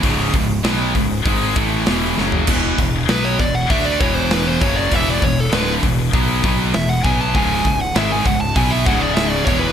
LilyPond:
<<
  \new Staff \with { instrumentName = "Lead electric guitar" } { \time 4/4 \key e \mixolydian \tempo 4 = 99 r1 | r4 b'16 cis''16 d''16 fis''16 e''16 d''16 cis''16 bis'16 b'16 bis'16 cis''16 d''16 | e''16 d''16 cis''16 a'16 b'8 r4. e''16 fis''16 gis''16 a''16 | gis''8. fis''16 e''16 gis''16 fis''16 a''16 gis''16 e''16 fis''16 d''16 e''16 d''16 cis''16 b'16 | }
  \new Staff \with { instrumentName = "Distorted electric guitar" } { \clef bass \time 4/4 \key e \mixolydian <cis, gis, cis>8 <cis, gis,>8 <b, fis b>8 <cis, gis,>8 <gis, dis gis>8 <a, e a>8 <e, b, e>8 <fis, cis fis>8 | <e, b, e>8 <e, b,>8 <b, fis b>8 <e, b,>8 <d a d'>8 <e, b, e>4 <fis, cis fis>8 | <e, b, e>8 <e, b,>8 <d, a, d>8 <e, b,>8 <b, fis b>8 <b, fis b>8 <e, b,>8 <b, fis b>8 | <cis, gis, cis>8 <cis, gis,>8 <gis, dis gis>8 <cis, gis,>8 <b, fis b>8 <cis, gis, cis>4 <e, b, e>8 | }
  \new Staff \with { instrumentName = "Distorted electric guitar" } { \clef bass \time 4/4 \key e \mixolydian <cis, gis, cis>8 <cis, gis,>8 <b, fis b>8 <cis, gis,>8 <gis, dis gis>8 <a, e a>8 <e, b, e>8 <fis, cis fis>8 | <e, b, e>8 <e, b,>8 <b, fis b>8 <e, b,>8 <d a d'>8 <e, b, e>4 <fis, cis fis>8 | <e, b, e>8 <e, b,>8 <d, a, d>8 <e, b,>8 <b, fis b>8 <b, fis b>8 <e, b,>8 <b, fis b>8 | <cis, gis, cis>8 <cis, gis,>8 <gis, dis gis>8 <cis, gis,>8 <b, fis b>8 <cis, gis, cis>4 <e, b, e>8 | }
  \new Staff \with { instrumentName = "Overdriven electric guitar" } { \clef bass \time 4/4 \key e \mixolydian <cis, gis, cis>8 <cis, gis,>8 <b, fis b>8 <cis, gis,>8 <gis, dis gis>8 <a, e a>8 <e, b, e>8 <fis, cis fis>8 | <e, b, e>8 <e, b,>8 <b, fis b>8 <e, b,>8 <d a d'>8 <e, b, e>4 <fis, cis fis>8 | <e, b, e>8 <e, b,>8 <d, a, d>8 <e, b,>8 <b, fis b>8 <b, fis b>8 <e, b,>8 <b, fis b>8 | <cis, gis, cis>8 <cis, gis,>8 <gis, dis gis>8 <cis, gis,>8 <b, fis b>8 <cis, gis, cis>4 <e, b, e>8 | }
  \new Staff \with { instrumentName = "Fingered electric bass" } { \clef bass \time 4/4 \key e \mixolydian cis,,8 cis,,8 b,,8 cis,,8 gis,,8 a,,8 e,,8 fis,,8 | e,,8 e,,8 b,,8 e,,8 d,8 e,,4 fis,,8 | e,,8 e,,8 d,,8 e,,8 b,,8 b,,8 e,,8 b,,8 | cis,,8 cis,,8 gis,,8 cis,,8 b,,8 cis,,4 e,,8 | }
  \new DrumStaff \with { instrumentName = "Drums" } \drummode { \time 4/4 <hho bd>8 <hho bd>8 <hho sn>8 <hho bd>8 <hho bd>8 <hho bd>8 <hho sn>8 sn16 tomfh16 | <cymc bd>8 <hho bd>8 <hho sn>8 <hho bd>8 <hho bd>8 <hho bd>8 <hho sn>8 <hho bd>8 | <hho bd>8 <hho bd>8 <hho sn>8 <hho bd>8 <hho bd>8 <hho bd>8 <hho sn>8 <hho bd>8 | <hho bd>8 <hho bd>8 <hho sn>8 <hho bd>8 <hho bd>8 <hho bd>8 <hho sn>8 <hho bd>8 | }
>>